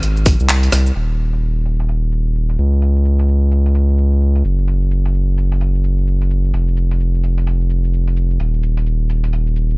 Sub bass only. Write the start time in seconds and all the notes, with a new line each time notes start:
Already playing: G#1
0.40 C2
0.73 C2
0.96 D#1
2.59 C#2
4.45 F#1
6.54 F1
8.40 D#1